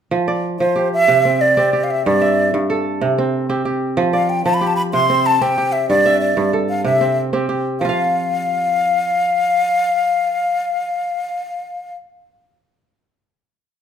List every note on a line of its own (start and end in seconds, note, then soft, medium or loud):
0.11 0.59 F3 medium
0.28 1.38 D5 medium
0.59 1.12 F3 medium
0.59 0.89 C5 medium
0.76 1.57 G4 medium
0.94 1.43 E5 loud
1.08 2.09 C3 medium
1.25 1.57 C4 medium
1.41 1.85 D5 medium
1.57 3.18 C4 medium
1.57 1.73 G4 medium
1.73 3.14 G4 medium
1.84 1.92 F5 medium
1.91 2.05 E5 medium
2.06 2.53 G2 medium
2.06 2.50 D5 medium
2.21 3.25 E5 medium
2.54 3.06 G2 medium
2.70 4.01 A4 medium
3.01 4.02 C3 medium
3.18 3.49 C4 medium
3.49 5.09 C4 medium
3.49 3.65 G4 medium
3.65 4.61 G4 medium
3.97 4.44 F3 medium
4.13 5.24 D5 medium
4.13 4.31 F5 medium
4.30 4.45 G5 medium
4.45 4.98 F3 medium
4.45 4.55 A5 medium
4.54 4.69 B5 medium
4.61 5.41 G4 medium
4.67 4.75 A5 medium
4.76 4.82 B5 medium
4.93 5.95 C3 medium
4.93 5.28 C6 medium
5.10 5.41 C4 medium
5.26 5.43 A5 medium
5.41 7.00 C4 medium
5.41 5.57 G4 medium
5.41 5.74 G5 medium
5.58 6.99 G4 medium
5.72 5.88 E5 medium
5.89 6.36 G2 medium
5.89 6.19 D5 medium
6.06 7.09 E5 medium
6.21 6.51 D5 medium
6.37 6.90 G2 medium
6.53 7.85 A4 medium
6.69 6.84 F5 medium
6.84 7.86 C3 medium
6.84 7.19 E5 medium
7.01 7.33 C4 medium
7.33 9.13 C4 medium
7.33 7.49 G4 medium
7.49 8.90 G4 medium
7.80 11.99 F3 medium
7.80 11.93 F5 medium
7.85 12.03 F4 medium
7.89 12.07 F5 medium